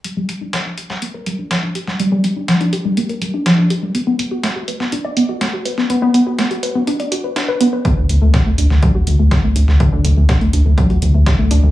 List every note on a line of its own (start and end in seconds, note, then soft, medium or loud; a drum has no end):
0.04 0.13 G3 medium
0.04 closed hi-hat medium
0.17 0.28 G3 loud
0.29 0.41 G3 medium
0.29 closed hi-hat medium
0.41 0.50 D4 medium
0.53 0.59 F3 medium
0.53 snare loud
0.53 closed hi-hat medium
0.66 0.71 D4 medium
0.78 0.86 G4 medium
0.78 closed hi-hat medium
0.90 0.99 G3 medium
0.90 snare soft
1.02 1.07 A#3 medium
1.02 closed hi-hat medium
1.14 1.19 A#4 medium
1.26 1.38 G3 medium
1.26 closed hi-hat medium
1.39 1.47 D4 medium
1.51 1.56 F3 medium
1.51 snare loud
1.51 closed hi-hat medium
1.63 1.68 D4 medium
1.75 1.84 G4 medium
1.75 closed hi-hat medium
1.87 1.96 G3 medium
1.87 snare soft
2.00 2.08 G3 medium
2.00 closed hi-hat medium
2.12 2.23 G3 loud
2.24 2.36 G3 medium
2.24 closed hi-hat medium
2.24 closed hi-hat loud
2.36 2.45 D4 medium
2.48 2.54 F3 medium
2.48 snare loud
2.48 closed hi-hat medium
2.61 2.66 D4 medium
2.61 closed hi-hat soft
2.73 2.82 G4 medium
2.73 closed hi-hat medium
2.73 closed hi-hat loud
2.85 2.94 G3 medium
2.97 3.02 A#3 medium
2.97 closed hi-hat medium
3.09 3.15 A#4 medium
3.09 closed hi-hat soft
3.22 3.33 G3 medium
3.22 closed hi-hat medium
3.22 closed hi-hat loud
3.34 3.42 D4 medium
3.46 3.51 F3 medium
3.46 snare loud
3.46 closed hi-hat medium
3.58 3.63 D4 medium
3.70 3.79 G4 medium
3.70 closed hi-hat medium
3.70 closed hi-hat loud
3.83 3.91 G3 medium
3.95 4.03 B3 medium
3.95 closed hi-hat medium
4.07 4.18 B3 loud
4.19 4.31 B3 medium
4.19 closed hi-hat medium
4.19 closed hi-hat loud
4.31 4.40 F#4 medium
4.43 4.49 A3 medium
4.43 snare loud
4.43 closed hi-hat medium
4.56 4.61 F#4 medium
4.68 4.77 B4 medium
4.68 closed hi-hat medium
4.68 closed hi-hat loud
4.80 4.89 B3 medium
4.80 snare soft
4.92 4.98 D4 medium
4.92 closed hi-hat medium
5.04 5.10 D5 medium
5.17 5.28 B3 medium
5.17 closed hi-hat medium
5.17 closed hi-hat loud
5.29 5.38 F#4 medium
5.41 5.46 A3 medium
5.41 snare loud
5.41 closed hi-hat medium
5.53 5.59 F#4 medium
5.65 5.74 B4 medium
5.65 closed hi-hat medium
5.65 closed hi-hat loud
5.78 5.86 B3 medium
5.78 snare soft
5.90 5.99 B3 medium
5.90 closed hi-hat medium
6.02 6.13 B3 loud
6.14 6.26 B3 medium
6.14 closed hi-hat medium
6.14 closed hi-hat loud
6.26 6.35 F#4 medium
6.39 6.44 A3 medium
6.39 snare loud
6.39 closed hi-hat medium
6.51 6.56 F#4 medium
6.51 closed hi-hat soft
6.63 6.72 B4 medium
6.63 closed hi-hat medium
6.63 closed hi-hat loud
6.75 6.84 B3 medium
6.87 6.93 D4 medium
6.87 closed hi-hat medium
7.00 7.05 D5 medium
7.00 closed hi-hat soft
7.12 7.21 F#4 medium
7.12 closed hi-hat medium
7.24 7.33 B4 medium
7.36 7.48 D4 medium
7.36 snare loud
7.36 closed hi-hat medium
7.48 7.57 B4 loud
7.61 7.72 B3 loud
7.61 closed hi-hat medium
7.61 closed hi-hat loud
7.73 7.78 B4 medium
7.85 7.94 D3 medium
7.85 kick loud
7.85 closed hi-hat medium
7.97 8.06 D2 medium
7.97 8.08 D3 loud
8.09 8.18 D2 medium
8.09 8.21 D3 medium
8.09 closed hi-hat medium
8.09 closed hi-hat loud
8.22 8.30 D2 medium
8.22 8.30 A3 medium
8.34 8.39 C3 medium
8.34 kick loud
8.34 snare loud
8.34 closed hi-hat medium
8.46 8.54 D2 medium
8.46 8.51 A3 medium
8.58 8.67 D2 medium
8.58 8.67 D4 medium
8.58 closed hi-hat medium
8.58 closed hi-hat loud
8.70 8.79 D2 medium
8.70 8.79 D3 medium
8.70 snare soft
8.82 8.88 F#3 medium
8.82 kick loud
8.82 closed hi-hat medium
8.95 9.03 D2 medium
8.95 9.00 F#4 medium
9.07 9.15 D2 loud
9.07 9.19 D3 medium
9.07 closed hi-hat medium
9.19 9.28 D2 medium
9.19 9.28 A3 medium
9.31 9.37 C3 medium
9.31 kick loud
9.31 snare loud
9.31 closed hi-hat medium
9.44 9.52 C2 medium
9.44 9.49 A3 medium
9.56 9.64 D2 medium
9.56 9.64 D4 medium
9.56 closed hi-hat medium
9.56 closed hi-hat loud
9.68 9.76 D2 medium
9.68 9.77 D3 medium
9.68 snare soft
9.80 9.89 D3 medium
9.80 kick loud
9.80 closed hi-hat medium
9.92 10.01 D2 medium
9.92 10.03 D3 loud
10.04 10.13 D2 medium
10.04 10.16 D3 medium
10.04 closed hi-hat medium
10.17 10.25 D2 medium
10.17 10.25 A3 medium
10.29 10.34 C3 medium
10.29 kick loud
10.29 snare loud
10.29 closed hi-hat medium
10.41 10.50 D2 medium
10.41 10.46 A3 medium
10.41 closed hi-hat soft
10.53 10.62 D2 loud
10.53 10.62 D4 medium
10.53 closed hi-hat medium
10.53 closed hi-hat loud
10.66 10.74 D2 medium
10.66 10.74 D3 medium
10.78 10.83 F#3 medium
10.78 kick loud
10.78 closed hi-hat medium
10.90 10.98 D2 medium
10.90 10.95 F#4 medium
10.90 closed hi-hat soft
11.02 11.11 D2 loud
11.02 11.14 D3 medium
11.02 closed hi-hat medium
11.14 11.23 D2 medium
11.14 11.23 A3 medium
11.26 11.32 C3 medium
11.26 kick loud
11.26 snare loud
11.26 closed hi-hat medium
11.39 11.47 C2 medium
11.39 11.44 A3 medium
11.51 11.59 D2 medium
11.51 11.60 D4 medium
11.51 closed hi-hat medium
11.63 11.71 D2 medium
11.63 11.71 D3 medium